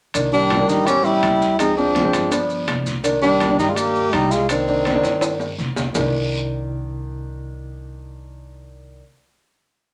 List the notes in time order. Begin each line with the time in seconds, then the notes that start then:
0.14 C2 D#3 A#3 D4, high conga, high timbale, long guiro, maracas
0.32 D#3 G3 A#3 D4, maracas
0.50 D#3 A#3 D4, high conga, high timbale, short guiro, maracas
0.59 D#3 A#3 D4
0.69 A1 G3 D#4, high conga, short guiro, maracas
0.86 G3 B3 C#4 G4, high conga, high timbale, long guiro, maracas
1.04 G3 E4, high conga, maracas
1.23 D2, high conga, high timbale, short guiro, maracas
1.41 high conga, short guiro, maracas
1.59 F3 G#3 C4 D#4, high conga, high timbale, long guiro, maracas
1.77 F3 G#3 C4 D4, high conga, maracas
1.95 F3 G#3 C4, high conga, high timbale, short guiro, maracas
2.04 F3 G#3 C4
2.13 G1, high conga, high timbale, short guiro, maracas
2.31 F3 B3 D4, high conga, high timbale, long guiro, maracas
2.50 high conga, maracas
2.67 C2, high conga, high timbale, low timbale, short guiro, maracas
2.86 high conga, short guiro, maracas
3.04 D#3 A#3 D4, high conga, high timbale, long guiro, maracas
3.22 D#3 G3 A#3 D4, high conga, maracas
3.40 D#3 A#3 D4, high conga, high timbale, short guiro, maracas
3.50 D#3 A#3 D4
3.58 G2 G3 D#4, high conga, short guiro, maracas
3.69 G#3 F4
3.76 A#3 G4, high conga, high timbale, long guiro, maracas
3.95 high conga, maracas
4.13 C2 G3 D#4, high conga, high timbale, low timbale, short guiro, maracas
4.31 G#3 F4, high conga, short guiro, maracas
4.49 D#3 A#3 C4 D4, high conga, high timbale, long guiro, maracas
4.68 D#3 A#3 D4, high conga, maracas
4.85 D#3 A#3 D4, high conga, high timbale, short guiro, maracas
4.95 D#3 A#3 D4
5.03 G2, high conga, high timbale, short guiro, maracas
5.21 high conga, high timbale, long guiro, maracas
5.40 high conga, low timbale, maracas
5.58 C2, high conga, short guiro, maracas
5.76 high conga, low timbale, short guiro, maracas
5.93 C2 D#3 A#3 D4, low conga, low timbale, long guiro, maracas